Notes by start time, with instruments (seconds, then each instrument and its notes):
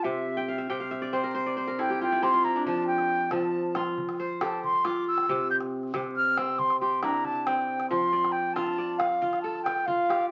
Already playing: kora F4 G4 A4 C5
0.03 kora C3, flute E5
0.37 kora G5
0.48 kora F5
0.58 kora E5
0.70 kora C3 G5
0.80 kora F5
0.91 kora E5
1.02 kora D5
1.13 kora C4 C5
1.24 kora A#4
1.35 kora C5
1.46 kora D5
1.57 kora C5
1.67 kora A#4
1.79 kora E4 A4, flute G5
1.90 kora G4
2.01 kora F4, flute G5
2.12 kora E4
2.22 kora C4 G4, flute C6
2.34 kora F4
2.44 kora E4, flute A#5
2.56 kora D4
2.66 kora F3, flute A5, calabash thump
2.87 flute G5, calabash click
2.98 calabash click
3.31 kora F3, flute A5, calabash thump, calabash click
3.75 kora F4, calabash click
3.98 calabash thump
4.09 calabash click
4.20 kora C5
4.41 kora G4 A4, flute A5, calabash click
4.64 flute C6, calabash thump
4.85 kora F4, flute D6, calabash click
5.08 flute E6
5.18 calabash click
5.29 kora C3, calabash thump, calabash click
5.50 flute G6, calabash click
5.61 calabash click
5.83 calabash click
5.94 kora C3, calabash thump, calabash click
6.16 flute F6
6.37 kora C4, flute E6, calabash click
6.59 flute C6, calabash thump, calabash click
6.70 calabash click
6.80 kora G4, flute C6
7.03 kora D4 E4, flute A#5, calabash click
7.14 calabash click
7.25 flute A5, calabash thump, calabash click
7.35 calabash click
7.46 kora C4, flute G5, calabash click
7.68 calabash click
7.80 calabash click
7.90 kora F3, flute C6, calabash thump
8.13 kora D5
8.24 calabash click
8.32 flute G5
8.54 kora F4, flute A5, calabash thump, calabash click
8.78 kora D5, calabash click
8.98 flute F5, calabash click
9.22 kora F4, calabash thump, calabash click
9.33 calabash click
9.42 kora A4, flute A5
9.55 calabash click
9.63 flute G5, calabash click
9.86 kora F4, flute F5, calabash thump
10.09 kora G4, calabash click